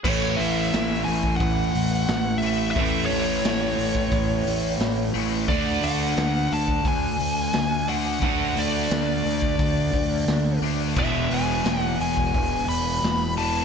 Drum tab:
CC |x---------------|----------------|----------------|----------------|
HH |--o-o-o-o-o-o-o-|o-o-o-o-o-o-o-o-|o-o-o-o-o-o-o-o-|o-o-o-o-o-o-o-o-|
SD |----o-------o---|----o-------o---|----o-------o---|----o-------o---|
BD |o------oo-------|o------oo-------|o------oo-------|o------oo-o-----|

CC |x---------------|
HH |--o-o-o-o-o-o-o-|
SD |----o-------o---|
BD |o------oo-------|